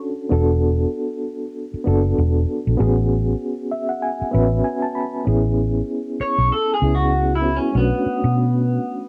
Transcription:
0.00 0.33 C#4 medium
0.00 0.30 D4 medium
0.00 0.31 F#4 medium
0.00 0.32 A4 medium
0.29 0.85 E1 medium
0.29 1.22 B3 medium
0.29 1.23 D4 medium
0.29 1.23 F#4 medium
0.29 1.24 A4 medium
1.74 muted fingered electric bass stroke soft
1.84 2.13 F#1 medium
1.84 2.55 B3 medium
1.84 2.56 D4 medium
1.84 2.56 F#4 medium
1.84 2.57 A4 medium
2.18 2.44 E1 medium
2.67 2.78 A#1 medium
2.77 3.33 A1 loud
2.77 3.70 B3 medium
2.77 3.70 C#4 medium
2.77 3.71 F#4 medium
2.77 3.71 G#4 medium
3.72 3.88 E5 medium
3.89 4.01 F#5 medium
4.02 4.31 G#5 medium
4.22 muted fingered electric bass stroke soft
4.31 4.61 A1 medium
4.31 5.02 B3 medium
4.31 5.03 C#4 medium
4.31 5.04 F#4 medium
4.31 5.04 B4 medium
4.31 4.62 E5 medium
4.64 4.81 G#5 medium
4.83 4.95 A5 medium
4.95 5.24 B5 medium
5.25 5.80 A1 medium
5.25 6.18 B3 medium
5.25 6.18 C#4 medium
5.25 6.19 E4 medium
5.25 6.20 G#4 medium
6.20 6.49 C#5 loud
6.20 muted fingered electric bass stroke soft
6.38 6.49 B1 medium
6.52 6.71 A4 medium
6.74 6.94 G#4 medium
6.80 7.58 C#2 medium
6.80 7.29 B3 medium
6.80 7.30 C#4 medium
6.80 7.30 E4 medium
6.80 7.31 G#4 medium
6.95 7.32 F#4 medium
7.35 7.56 E4 medium
7.41 7.67 B3 medium
7.41 7.67 C#4 medium
7.41 7.68 E4 medium
7.41 7.68 F#4 medium
7.56 7.76 C#4 medium
7.72 7.90 B1 medium
7.72 8.65 A3 medium
7.72 8.66 C#4 medium
7.72 8.66 D4 medium
7.72 8.67 F#4 medium
7.77 9.09 B3 medium
8.06 muted fingered electric bass stroke soft
8.24 8.77 B2 loud

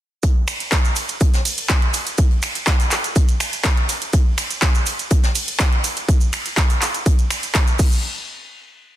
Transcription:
0.23 kick loud
0.23 closed hi-hat medium
0.23 cabasa medium
0.47 finger snap medium
0.47 closed hi-hat medium
0.47 open hi-hat loud
0.47 ride medium
0.47 cabasa medium
0.60 closed hi-hat medium
0.60 cabasa soft
0.71 kick loud
0.71 snare loud
0.71 clap loud
0.71 closed hi-hat medium
0.71 cabasa medium
0.85 closed hi-hat soft
0.85 cabasa soft
0.96 closed hi-hat medium
0.96 open hi-hat loud
0.96 ride medium
0.96 cabasa medium
1.09 closed hi-hat medium
1.09 cabasa soft
1.20 kick loud
1.20 closed hi-hat medium
1.20 cabasa soft
1.34 snare medium
1.34 closed hi-hat soft
1.34 cabasa soft
1.45 open hi-hat medium
1.45 open hi-hat loud
1.45 ride medium
1.45 cabasa medium
1.57 closed hi-hat medium
1.57 cabasa soft
1.69 kick loud
1.69 snare loud
1.69 clap loud
1.69 closed hi-hat medium
1.69 cabasa medium
1.82 closed hi-hat soft
1.93 closed hi-hat medium
1.93 open hi-hat loud
1.93 ride medium
1.93 cabasa medium
2.06 closed hi-hat soft
2.06 closed hi-hat medium
2.06 cabasa soft
2.18 kick loud
2.18 closed hi-hat medium
2.18 cabasa medium
2.31 closed hi-hat soft
2.42 finger snap medium
2.42 closed hi-hat medium
2.42 open hi-hat loud
2.42 ride medium
2.42 cabasa loud
2.55 closed hi-hat soft
2.55 closed hi-hat medium
2.55 cabasa soft
2.67 kick loud
2.67 snare loud
2.67 clap loud
2.67 closed hi-hat medium
2.67 cabasa medium
2.79 closed hi-hat soft
2.79 open hi-hat medium
2.79 cabasa soft
2.91 clap medium
2.91 closed hi-hat medium
2.91 open hi-hat loud
2.91 ride medium
2.91 cabasa medium
3.04 closed hi-hat medium
3.04 cabasa soft
3.16 kick loud
3.16 closed hi-hat medium
3.16 cabasa medium
3.28 closed hi-hat soft
3.28 cabasa soft
3.40 finger snap medium
3.40 closed hi-hat medium
3.40 open hi-hat loud
3.40 ride medium
3.40 cabasa medium
3.53 closed hi-hat medium
3.53 cabasa soft
3.64 kick loud
3.64 snare loud
3.64 clap loud
3.64 closed hi-hat medium
3.64 cabasa medium
3.77 closed hi-hat soft
3.89 snare soft
3.89 closed hi-hat medium
3.89 open hi-hat loud
3.89 ride medium
3.89 cabasa medium
4.02 closed hi-hat medium
4.02 closed hi-hat soft
4.02 cabasa soft
4.13 kick loud
4.13 closed hi-hat medium
4.13 cabasa medium
4.38 finger snap medium
4.38 closed hi-hat medium
4.38 open hi-hat loud
4.38 ride medium
4.38 cabasa medium
4.50 closed hi-hat medium
4.50 cabasa soft
4.62 kick loud
4.62 snare loud
4.62 clap loud
4.62 closed hi-hat medium
4.62 cabasa medium
4.75 closed hi-hat soft
4.75 cabasa soft
4.86 closed hi-hat medium
4.86 open hi-hat loud
4.86 ride medium
4.86 cabasa loud
4.99 closed hi-hat medium
4.99 cabasa soft
5.10 kick loud
5.10 closed hi-hat medium
5.10 cabasa medium
5.23 snare medium
5.23 closed hi-hat soft
5.23 cabasa soft
5.35 open hi-hat loud
5.35 open hi-hat medium
5.35 ride medium
5.35 cabasa loud
5.48 closed hi-hat medium
5.48 cabasa soft
5.59 kick loud
5.59 snare loud
5.59 clap loud
5.59 closed hi-hat medium
5.59 cabasa medium
5.72 closed hi-hat soft
5.84 closed hi-hat medium
5.84 open hi-hat loud
5.84 ride medium
5.84 cabasa loud
5.96 closed hi-hat soft
5.96 closed hi-hat medium
5.96 cabasa soft
6.09 kick loud
6.09 closed hi-hat medium
6.09 cabasa medium
6.21 closed hi-hat soft
6.21 cabasa soft
6.33 finger snap medium
6.33 closed hi-hat medium
6.33 open hi-hat loud
6.33 ride medium
6.33 cabasa loud
6.46 closed hi-hat soft
6.46 cabasa soft
6.56 kick loud
6.56 snare loud
6.56 clap loud
6.56 closed hi-hat medium
6.56 cabasa medium
6.70 closed hi-hat soft
6.70 open hi-hat medium
6.70 cabasa soft
6.82 clap medium
6.82 closed hi-hat medium
6.82 open hi-hat loud
6.82 ride medium
6.82 cabasa medium
6.94 closed hi-hat medium
6.94 cabasa soft
7.06 kick loud
7.06 closed hi-hat medium
7.06 cabasa medium
7.19 closed hi-hat soft
7.19 cabasa soft
7.30 finger snap medium
7.30 closed hi-hat medium
7.30 open hi-hat loud
7.30 ride medium
7.30 cabasa loud
7.43 closed hi-hat medium
7.43 cabasa soft
7.55 kick loud
7.55 snare loud
7.55 clap loud
7.55 closed hi-hat medium
7.55 cabasa medium
7.67 closed hi-hat soft
7.67 cabasa soft
7.79 kick loud
7.79 crash medium
7.79 cabasa loud
7.92 cabasa soft

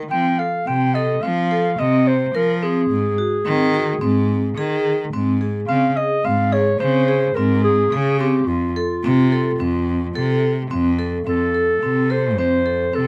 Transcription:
0.11 0.35 F3 medium
0.11 0.29 C4 medium
0.11 0.40 G5 medium
0.39 0.57 A4 medium
0.39 0.69 F5 medium
0.67 1.15 C3 medium
0.67 0.85 C4 medium
0.67 0.96 G5 medium
0.95 1.13 A4 medium
0.95 1.24 D#5 medium
1.22 1.71 F3 medium
1.22 1.40 C4 medium
1.22 1.81 F5 medium
1.51 1.69 A4 medium
1.79 2.26 C3 medium
1.79 2.14 C4 medium
1.79 2.09 D#5 medium
2.08 2.37 C5 medium
2.35 2.82 F3 medium
2.35 2.52 A#4 medium
2.35 2.65 A#4 medium
2.63 2.97 C4 medium
2.63 4.86 G#4 medium
2.90 3.14 G#2 medium
3.18 3.36 F#4 medium
3.46 3.94 D#3 medium
3.46 3.63 C4 medium
3.74 3.91 F#4 medium
4.01 4.49 G#2 medium
4.01 4.36 C4 medium
4.57 5.05 D#3 medium
4.57 4.92 G#4 medium
5.13 5.61 G#2 medium
5.13 5.31 C4 medium
5.41 5.59 G#4 medium
5.68 5.93 C#3 medium
5.68 5.86 C4 medium
5.68 5.98 F5 medium
5.97 6.14 G#4 medium
5.97 6.26 D#5 medium
6.25 6.72 G#2 medium
6.25 6.42 C4 medium
6.25 6.54 F5 medium
6.53 6.70 G#4 medium
6.53 6.79 C#5 medium
6.80 7.28 C#3 medium
6.80 6.98 C4 medium
6.80 7.37 C5 medium
7.08 7.26 G#4 medium
7.35 7.84 G#2 medium
7.35 7.71 C4 medium
7.35 7.63 A#4 medium
7.64 8.16 G#4 medium
7.92 8.40 C#3 medium
7.92 8.10 G#4 medium
8.20 8.55 C4 medium
8.20 8.49 G4 medium
8.47 8.72 F2 medium
8.47 10.70 F4 medium
8.76 8.94 A4 medium
9.04 9.51 C3 medium
9.04 9.22 C4 medium
9.32 9.49 A4 medium
9.60 10.07 F2 medium
9.60 9.95 C4 medium
10.15 10.63 C3 medium
10.15 10.50 A4 medium
10.71 11.18 F2 medium
10.71 10.88 C4 medium
10.99 11.16 A4 medium
11.26 11.74 F2 medium
11.26 11.44 C4 medium
11.26 12.13 A4 medium
11.54 11.72 A4 medium
11.82 12.39 C3 medium
11.82 12.00 C4 medium
12.10 12.27 A4 medium
12.10 12.38 C5 medium
12.38 12.85 F2 medium
12.38 12.56 C4 medium
12.38 12.97 C5 medium
12.66 12.83 A4 medium
12.93 13.07 C3 medium
12.93 13.07 C4 medium
12.93 13.07 A4 medium

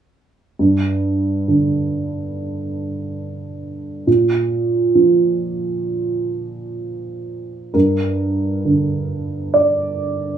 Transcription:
0.59 4.03 G2 soft
1.48 4.07 D3 soft
4.07 7.70 A#2 soft
4.95 7.74 F3 soft
7.74 10.38 G2 soft
7.74 9.55 A#4 soft
8.65 10.38 D3 soft
9.54 10.38 D5 soft

